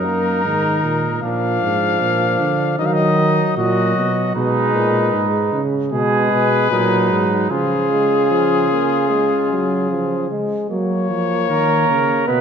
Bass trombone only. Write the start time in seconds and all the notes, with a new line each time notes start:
Already playing: F#2
0.44 G#2
0.83 A#2
1.22 A#2
1.62 G#2
2.01 A#2
2.40 D3
2.79 D#3
3.57 A#2
3.96 B2
4.36 B2
4.74 A#2
5.14 G#2
5.52 C#3
5.92 B2
6.31 B2
6.71 A#2
7.10 G#2
7.50 C#3
10.70 F#3
11.10 F3
11.49 D#3
11.89 C#3
12.28 B2